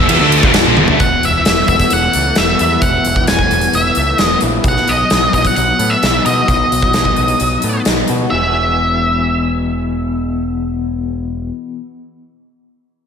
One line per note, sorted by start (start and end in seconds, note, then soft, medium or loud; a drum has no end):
0.00 0.10 B2 loud
0.00 0.52 E5 medium
0.08 0.19 E2 medium
0.08 0.20 E3 medium
0.08 0.20 B3 loud
0.08 ride loud
0.20 0.42 D2 loud
0.20 0.43 D3 medium
0.20 0.43 A3 loud
0.20 0.43 D4 loud
0.32 ride medium
0.42 0.64 E1 medium
0.42 0.65 E2 medium
0.42 0.65 B2 loud
0.42 0.65 E3 medium
0.42 kick loud
0.54 snare loud
0.54 ride loud
0.67 0.77 A#1 loud
0.67 0.77 A#2 medium
0.67 0.77 F3 medium
0.77 0.89 E1 medium
0.77 0.88 E2 medium
0.77 0.88 B2 medium
0.77 high tom medium
0.88 0.99 D2 loud
0.88 0.99 D3 medium
0.88 1.00 A3 loud
0.88 floor tom loud
1.00 1.15 E1 medium
1.00 2.15 E2 medium
1.00 1.24 F#5 medium
1.00 kick medium
1.00 closed hi-hat soft
1.23 1.39 E1 medium
1.23 1.92 E3 medium
1.23 1.68 E5 medium
1.23 closed hi-hat medium
1.45 1.61 E1 medium
1.45 2.14 A3 medium
1.45 snare loud
1.45 closed hi-hat medium
1.68 1.84 E1 medium
1.68 2.38 B3 medium
1.68 1.92 E5 medium
1.68 kick medium
1.68 closed hi-hat soft
1.79 kick medium
1.79 closed hi-hat medium
1.90 2.07 E1 medium
1.90 3.06 E3 medium
1.90 2.39 F#5 medium
1.90 closed hi-hat medium
2.13 2.30 C#2 medium
2.13 3.28 A3 medium
2.13 closed hi-hat medium
2.35 2.53 E1 medium
2.35 3.51 B3 medium
2.35 2.84 E5 medium
2.35 snare medium
2.35 closed hi-hat medium
2.59 2.76 E2 medium
2.59 3.74 E4 medium
2.59 closed hi-hat medium
2.82 2.98 E1 medium
2.82 3.97 E2 medium
2.82 3.24 F#5 medium
2.82 kick medium
2.82 closed hi-hat medium
3.05 3.21 E1 medium
3.05 3.73 E3 medium
3.05 closed hi-hat medium
3.16 kick medium
3.27 3.45 E1 medium
3.27 3.96 A3 medium
3.27 3.75 G#5 medium
3.27 snare medium
3.27 closed hi-hat medium
3.39 kick medium
3.51 3.67 E1 medium
3.51 4.20 B3 medium
3.51 closed hi-hat soft
3.61 closed hi-hat medium
3.73 3.89 E1 medium
3.73 4.65 E3 medium
3.73 4.20 E5 medium
3.73 closed hi-hat medium
3.95 4.12 C#2 medium
3.95 4.65 A3 medium
3.95 closed hi-hat medium
4.18 4.35 E1 medium
4.18 5.12 B3 medium
4.18 4.39 D#5 medium
4.18 snare medium
4.18 closed hi-hat soft
4.41 4.58 A#1 medium
4.41 4.65 E4 medium
4.41 closed hi-hat medium
4.64 4.79 B1 medium
4.64 5.80 B2 medium
4.64 kick medium
4.64 closed hi-hat soft
4.68 4.90 F#5 medium
4.76 snare soft
4.87 5.03 B1 medium
4.87 5.56 F#3 medium
4.87 5.31 D#5 medium
4.87 closed hi-hat medium
5.10 5.26 B1 medium
5.10 5.80 B3 medium
5.10 snare medium
5.10 closed hi-hat medium
5.33 5.49 B1 medium
5.33 5.46 D#5 medium
5.33 kick medium
5.33 closed hi-hat soft
5.45 5.55 F#5 medium
5.45 kick medium
5.45 closed hi-hat soft
5.56 5.72 B1 medium
5.56 6.71 F#3 medium
5.56 5.92 F#5 loud
5.56 closed hi-hat medium
5.79 5.94 A2 medium
5.79 6.94 B3 medium
5.79 closed hi-hat medium
5.90 6.22 E5 medium
6.03 6.18 B1 medium
6.03 7.17 D#4 medium
6.03 snare medium
6.03 closed hi-hat medium
6.26 6.41 B2 medium
6.26 7.40 F#4 medium
6.26 7.81 D#5 medium
6.26 closed hi-hat medium
6.48 6.63 B1 medium
6.48 7.63 B2 medium
6.48 kick medium
6.48 closed hi-hat soft
6.72 6.87 B1 medium
6.72 7.40 F#3 medium
6.72 closed hi-hat medium
6.82 kick medium
6.93 7.10 B1 medium
6.93 7.63 B3 medium
6.93 snare medium
6.93 closed hi-hat medium
7.05 kick medium
7.16 7.33 B1 medium
7.16 7.85 D#4 medium
7.16 closed hi-hat soft
7.28 closed hi-hat medium
7.40 7.56 B1 medium
7.40 8.31 F#3 medium
7.40 closed hi-hat medium
7.62 7.78 A2 medium
7.62 8.32 B3 medium
7.62 closed hi-hat medium
7.85 8.02 B1 medium
7.85 8.31 D#4 medium
7.85 snare medium
7.85 closed hi-hat soft
8.08 8.24 B2 medium
8.08 8.31 F#4 medium
8.08 closed hi-hat medium
8.30 11.50 E1 medium
8.30 11.80 E2 medium
8.30 11.81 B2 medium
8.30 11.82 E3 medium
8.30 11.83 G#3 medium
8.30 11.84 B3 medium
8.30 11.48 E5 medium
8.34 11.84 G#4 medium